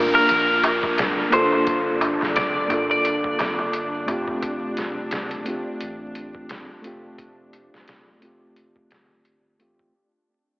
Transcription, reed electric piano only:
Already playing: A#3 D4 F4 A#4
1.30 A#3 D4 F4
1.36 A4
2.68 A#3 D4 F4
2.74 A4
4.06 A3 C4 F4
4.11 G4
5.44 A3 C4 F4
5.50 G4
6.82 A3 C4 F4
6.87 G4
8.19 A3 C4 F4
8.25 G4
9.59 A3 C4 F4 G4

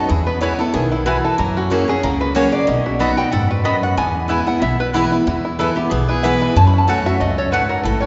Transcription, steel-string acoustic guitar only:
0.10 E2
0.41 E3 G#3 B3 E4
0.59 B3 E4
0.74 D#3
1.06 E3
1.38 F#3
1.70 F#3 A#3 C#4 G#4
1.88 C#4 G#4
2.03 C#3
2.35 F#3 A#3 C#4 G#4
2.52 C#4 G#4
2.67 B2
3.00 F#3 B3 D#4 F#4
3.17 D#4 F#4
3.32 G#2
3.65 F#2
3.97 E2
4.28 E3 G#3 B3 E4
4.47 B3 E4
4.62 B2
4.94 E3 G#3 B3 E4
5.12 B3 E4
5.27 E2
5.59 E3 G#3 B3 E4
5.77 B3 E4
5.91 B2
6.24 E3 G#3 B3 E4
6.56 F#2
6.88 F#3 A3 C#4 F#4
7.06 C#4 F#4
7.21 F#2
7.53 G#2
7.85 A2

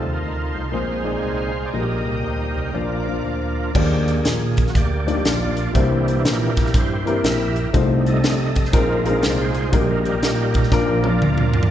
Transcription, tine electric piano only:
0.04 D#2
0.22 D2
0.54 C2
0.73 A#1
1.23 C2
1.74 A#1
2.06 C2
2.24 D2
2.56 C2
2.74 A#1
3.25 D2
3.75 D#2
4.25 A#2
4.75 D2
5.25 A#1
5.75 C2
6.25 A#2
6.74 G2
7.24 A#1
7.74 C2
8.24 C3
8.73 A#1
9.23 C2
9.73 A#1
10.23 A#2
10.72 A#1
11.22 D2

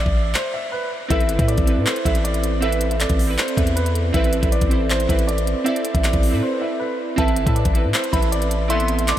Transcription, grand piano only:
Already playing: D5
0.35 C5
0.54 E5
0.72 B4
1.11 E5
1.38 E5
1.48 D5
1.86 C5
2.06 E5
2.24 D5
2.62 E5
2.91 E5
3.01 D5
3.38 C5
3.57 E5
3.76 B4
4.14 E5
4.43 E5
4.52 D5
4.91 C5
5.10 E5
5.27 D5
5.66 E5
5.94 E5
6.04 D5
6.43 C5
6.61 E5
6.80 B4
7.18 E5
7.46 E5
7.56 D5
7.94 C5
8.13 E5
8.32 D5
8.70 E5
8.99 E5
9.08 D5

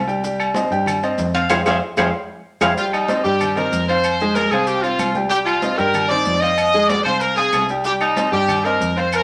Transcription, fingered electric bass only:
Already playing: C2
0.71 G2
1.18 F2
1.50 F2
1.66 F2
1.98 F2
2.61 F2
3.24 G2
3.72 F2
4.51 C2
4.99 C2
5.79 G2
6.26 F2
7.05 C2
7.53 C2
8.32 G2
8.81 F2

